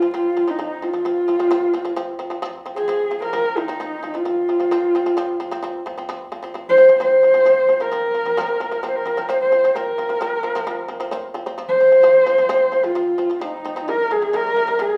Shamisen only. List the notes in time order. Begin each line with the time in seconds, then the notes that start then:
0.02 F3 C4
0.14 F3 C4
0.37 F3 C4
0.48 F3 C4
0.59 F3 C4
0.82 F3 C4
0.93 F3 C4
1.05 F3 C4
1.28 F3 C4
1.39 F3 C4
1.51 F3 C4
1.74 F3 C4
1.85 F3 C4
1.96 F3 C4
2.19 F3 C4
2.30 F3 C4
2.42 F3 C4
2.66 F3 C4
2.76 F3 C4
2.88 F3 C4
3.11 F3 C4
3.22 F3 C4
3.33 F3 C4
3.57 F3 C4
3.68 F3 C4
3.80 F3 C4
4.03 F3 C4
4.14 F3 C4
4.25 F3 C4
4.49 F3 C4
4.60 F3 C4
4.71 F3 C4
4.95 F3 C4
5.06 F3 C4
5.17 F3 C4
5.40 F3 C4
5.51 F3 C4
5.63 F3 C4
5.86 F3 C4
5.98 F3 C4
6.09 F3 C4
6.32 F3 C4
6.43 F3 C4
6.54 F3 C4
6.77 F3 C4
6.89 F3 C4
7.00 F3 C4
7.23 F3 C4
7.34 F3 C4
7.45 F3 C4
7.69 F3 C4
7.80 F3 C4
7.92 F3 C4
8.14 F3 C4
8.25 F3 C4
8.37 F3 C4
8.60 F3 C4
8.71 F3 C4
8.83 F3 C4
9.06 F3 C4
9.17 F3 C4
9.29 F3 C4
9.52 F3 C4
9.64 F3 C4
9.76 F3 C4
9.98 F3 C4
10.09 F3 C4
10.21 F3 C4
10.43 F3 C4
10.55 F3 C4
10.67 F3 C4
10.88 F3 C4
11.00 F3 C4
11.11 F3 C4
11.34 F3 C4
11.46 F3 C4
11.58 F3 C4
11.80 F3 C4
11.92 F3 C4
12.03 F3 C4
12.26 F3 C4
12.38 F3 C4
12.49 F3 C4
12.72 F3 C4
12.83 F3 C4
12.95 F3 C4
13.18 F3 C4
13.30 F3 C4
13.41 F3 C4
13.65 F3 C4
13.76 F3 C4
13.88 C3 G3
14.11 C3 G3
14.22 C3 G3
14.33 C3 G3
14.56 C3 G3
14.67 C3 G3
14.79 C3 G3